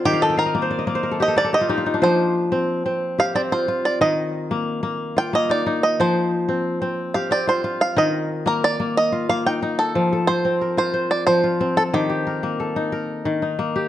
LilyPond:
<<
  \new Staff \with { instrumentName = "Five-string banjo" } { \time 12/8 \key f \mixolydian \tempo 4. = 121 << { g'8 a'8 bes'4. r4 ees''8 d''8 ees''4. | c''4 r2 r8 f''8 d''8 c''4 d''8 | ees''4 r2 r8 g''8 ees''8 d''4 ees''8 | c''4 r2 r8 f''8 d''8 c''4 f''8 |
ees''4 r8 bes'8 d''4 ees''4 f''8 g''4. | r1. | r1. | } \\ { r1. | r1. | r1. | r1. |
r1 r4. a'8~ | a'4 c''4. c''4 d''8 c''4. a'8 | g'2. r2. | } >> }
  \new Staff \with { instrumentName = "Kora" } { \time 12/8 \key f \mixolydian << { g''16 f''16 ees''16 g''16 f''16 ees''16 d''16 c''16 d''16 ees''16 d''16 c''16 bes'16 a'16 g'16 a'16 bes'16 a'16 g'16 f'16 g'16 f'16 ees'16 d'16~ | d'16 r1 r4. r16 | r1. | r1. |
r1. | r1. | r1. | } \\ { r1. | c''4. r2 g'4 f'4. | bes'4. r2 f'4 ees'4. | c''4. r2 g'4 f'4. |
bes'4. r2 f'4 ees'4. | r8 a'8 c''4 bes'4 c''4. f'4 a'8~ | a'8 g'8 bes'4 a'4 bes'4. ees'4 g'8 | } >> }
  \new Staff \with { instrumentName = "Kora" } { \time 12/8 \key f \mixolydian ees4 r8 bes4 bes4 r8 bes4 ees'4 | f4 r8 c'4 c'4 r8 c'4 f'4 | ees4 r8 bes4 bes4 r8 bes4 ees'4 | f4 r8 c'4 c'4 r8 c'4 f'4 |
ees4 r8 bes4 bes4 r8 bes4 ees'4 | f4 r8 c'4 f'4 r8 f4 c'4 | ees4 r8 bes4 ees'4 r8 ees4 bes4 | }
>>